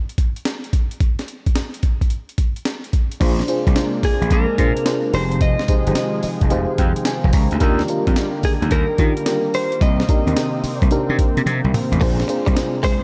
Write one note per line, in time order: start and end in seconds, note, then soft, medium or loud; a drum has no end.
0.09 closed hi-hat soft
0.18 kick medium
0.18 closed hi-hat medium
0.36 closed hi-hat soft
0.45 snare loud
0.45 closed hi-hat medium
0.64 closed hi-hat medium
0.73 kick medium
0.73 closed hi-hat medium
0.91 closed hi-hat medium
1.00 kick loud
1.00 closed hi-hat medium
1.19 snare medium
1.19 closed hi-hat soft
1.28 closed hi-hat medium
1.46 kick medium
1.46 closed hi-hat medium
1.56 snare loud
1.56 closed hi-hat medium
1.74 closed hi-hat medium
1.83 kick medium
1.83 closed hi-hat medium
2.01 kick medium
2.01 closed hi-hat soft
2.10 closed hi-hat medium
2.29 closed hi-hat soft
2.38 kick medium
2.38 closed hi-hat medium
2.56 closed hi-hat soft
2.65 snare loud
2.65 closed hi-hat medium
2.84 closed hi-hat medium
2.93 kick medium
2.93 closed hi-hat medium
3.12 closed hi-hat medium
3.20 3.41 A#1 loud
3.20 7.57 C3 medium
3.20 5.11 G#3 medium
3.20 5.11 A#3 medium
3.20 3.41 D4 loud
3.20 5.11 D4 medium
3.20 3.41 F4 medium
3.20 3.41 G#4 medium
3.20 3.42 C5 loud
3.20 kick loud
3.20 closed hi-hat medium
3.20 crash medium
3.20 tambourine medium
3.39 snare medium
3.48 3.69 D4 medium
3.48 3.69 F4 medium
3.48 3.69 G#4 medium
3.48 3.69 C5 loud
3.48 closed hi-hat medium
3.48 tambourine medium
3.67 3.73 C2 loud
3.67 kick medium
3.67 closed hi-hat medium
3.75 4.27 D4 medium
3.75 4.28 F4 medium
3.75 4.28 G#4 medium
3.75 4.28 C5 medium
3.75 snare loud
3.75 closed hi-hat medium
3.75 tambourine medium
4.03 4.32 G#4 medium
4.03 muted slap bass stroke soft
4.03 kick loud
4.03 open hi-hat medium
4.03 tambourine medium
4.21 4.28 A#1 medium
4.21 closed hi-hat soft
4.30 4.44 A#1 loud
4.30 5.17 A#4 medium
4.30 kick medium
4.30 closed hi-hat medium
4.30 tambourine medium
4.58 4.72 A#2 medium
4.58 4.78 D4 medium
4.58 4.79 F4 medium
4.58 4.79 G#4 medium
4.58 4.79 C5 medium
4.58 kick medium
4.58 closed hi-hat medium
4.77 closed hi-hat medium
4.86 5.13 D4 medium
4.86 5.13 F4 medium
4.86 5.12 G#4 medium
4.86 5.12 C5 medium
4.86 snare loud
4.86 closed hi-hat medium
4.86 tambourine loud
5.13 5.54 F1 loud
5.13 9.77 D#3 medium
5.13 7.58 F3 medium
5.13 7.59 G#3 medium
5.13 5.61 D#4 medium
5.13 5.61 G4 medium
5.13 5.61 G#4 medium
5.13 5.61 C5 medium
5.13 5.40 C5 loud
5.13 open hi-hat medium
5.13 tambourine medium
5.32 closed hi-hat medium
5.41 6.47 D#5 loud
5.41 kick loud
5.41 closed hi-hat medium
5.41 tambourine medium
5.59 snare medium
5.68 5.79 D#4 medium
5.68 5.80 G4 medium
5.68 5.80 G#4 medium
5.68 5.80 C5 medium
5.68 kick loud
5.68 closed hi-hat medium
5.68 tambourine medium
5.87 5.94 G1 loud
5.87 6.25 D#4 medium
5.87 6.25 G4 medium
5.87 6.25 G#4 medium
5.87 6.25 C5 medium
5.87 closed hi-hat medium
5.95 snare loud
5.95 closed hi-hat medium
5.95 tambourine medium
6.23 6.49 D#5 medium
6.23 muted slap bass stroke soft
6.23 open hi-hat medium
6.23 tambourine medium
6.41 6.48 F1 medium
6.41 kick medium
6.41 closed hi-hat medium
6.50 6.65 F1 loud
6.50 7.22 D#4 loud
6.50 7.22 G4 loud
6.50 7.22 G#4 medium
6.50 7.23 C5 loud
6.50 6.77 F5 medium
6.50 closed hi-hat medium
6.50 tambourine medium
6.78 6.92 F2 loud
6.78 7.04 G5 medium
6.78 kick medium
6.78 closed hi-hat medium
6.96 closed hi-hat medium
7.05 7.32 G#5 medium
7.05 snare loud
7.05 closed hi-hat medium
7.05 tambourine medium
7.24 7.31 F1 loud
7.24 kick loud
7.33 7.47 C#2 loud
7.33 7.59 A#5 medium
7.33 kick loud
7.33 open hi-hat medium
7.33 tambourine medium
7.51 7.59 D2 medium
7.51 closed hi-hat medium
7.60 7.81 D#2 loud
7.60 9.79 D3 medium
7.60 9.79 G3 medium
7.60 13.03 A#3 medium
7.60 7.81 D4 medium
7.60 7.81 F4 medium
7.60 7.82 G4 medium
7.60 7.82 A#4 loud
7.60 kick loud
7.60 closed hi-hat medium
7.60 tambourine medium
7.79 snare medium
7.88 8.09 D4 medium
7.88 8.09 F4 medium
7.88 8.09 G4 medium
7.88 8.10 A#4 loud
7.88 closed hi-hat medium
7.88 tambourine medium
8.07 8.14 F2 medium
8.07 kick medium
8.07 closed hi-hat medium
8.16 8.68 D4 medium
8.16 8.68 F4 medium
8.16 8.68 G4 medium
8.16 8.68 A#4 medium
8.16 snare loud
8.16 closed hi-hat medium
8.16 tambourine medium
8.43 8.52 G#4 medium
8.43 muted slap bass stroke soft
8.43 kick medium
8.43 open hi-hat medium
8.43 tambourine medium
8.62 8.69 D#2 medium
8.62 closed hi-hat medium
8.71 8.85 D#2 loud
8.71 9.57 A#4 medium
8.71 kick medium
8.71 closed hi-hat medium
8.71 tambourine medium
8.98 9.12 D#3 loud
8.98 9.19 D4 medium
8.98 9.19 F4 medium
8.98 9.19 G4 medium
8.98 9.20 A#4 medium
8.98 kick medium
8.98 closed hi-hat medium
9.17 closed hi-hat medium
9.26 9.78 D4 medium
9.26 9.78 F4 medium
9.26 9.79 G4 medium
9.26 9.79 A#4 medium
9.26 snare loud
9.26 closed hi-hat medium
9.26 tambourine medium
9.54 9.81 C5 loud
9.54 open hi-hat medium
9.54 tambourine medium
9.72 closed hi-hat medium
9.81 10.01 C2 loud
9.81 11.99 C3 medium
9.81 11.99 D#3 medium
9.81 13.03 C4 medium
9.81 10.88 D#5 loud
9.81 kick loud
9.81 closed hi-hat medium
9.81 tambourine medium
10.00 snare medium
10.09 10.20 D4 medium
10.09 10.20 D#4 medium
10.09 10.20 G4 medium
10.09 10.20 A#4 medium
10.09 kick loud
10.09 closed hi-hat medium
10.09 tambourine medium
10.27 10.34 D#2 medium
10.27 10.65 C4 medium
10.27 10.65 D#4 medium
10.27 10.65 G4 medium
10.27 10.65 A#4 medium
10.27 closed hi-hat medium
10.36 snare loud
10.36 closed hi-hat medium
10.36 tambourine medium
10.64 muted slap bass stroke medium
10.64 open hi-hat medium
10.64 tambourine medium
10.82 10.89 C2 medium
10.82 kick medium
10.82 closed hi-hat soft
10.91 11.63 D4 loud
10.91 11.63 D#4 medium
10.91 11.63 G4 medium
10.91 11.63 A#4 loud
10.91 closed hi-hat medium
10.91 tambourine medium
11.09 11.16 C3 loud
11.19 kick medium
11.19 closed hi-hat medium
11.37 11.44 C3 medium
11.37 closed hi-hat medium
11.46 11.60 C3 loud
11.46 closed hi-hat medium
11.46 high tom medium
11.64 11.71 C2 loud
11.64 mid tom medium
11.74 mid tom loud
11.74 open hi-hat medium
11.92 11.99 A1 medium
11.92 closed hi-hat medium
11.92 floor tom loud
12.01 12.22 A#1 loud
12.01 13.03 C3 medium
12.01 13.03 G#3 medium
12.01 12.16 A#3 medium
12.01 12.22 D4 medium
12.01 12.22 F4 medium
12.01 12.22 G#4 medium
12.01 12.22 C5 loud
12.01 kick loud
12.01 crash medium
12.01 tambourine medium
12.20 snare medium
12.28 12.49 D4 medium
12.28 12.49 F4 medium
12.28 12.49 G#4 medium
12.28 12.50 C5 loud
12.28 muted clean electric guitar stroke soft
12.28 closed hi-hat medium
12.28 tambourine medium
12.46 12.54 C2 loud
12.46 12.54 G3 medium
12.46 kick medium
12.46 closed hi-hat medium
12.56 13.03 D4 medium
12.56 13.03 F4 medium
12.56 13.03 G#4 medium
12.56 13.03 C5 medium
12.56 snare loud
12.56 closed hi-hat medium
12.56 tambourine medium
12.83 12.99 G#3 medium
12.83 13.03 C5 loud
12.83 muted slap bass stroke soft
12.83 kick loud
12.83 open hi-hat medium
12.83 tambourine medium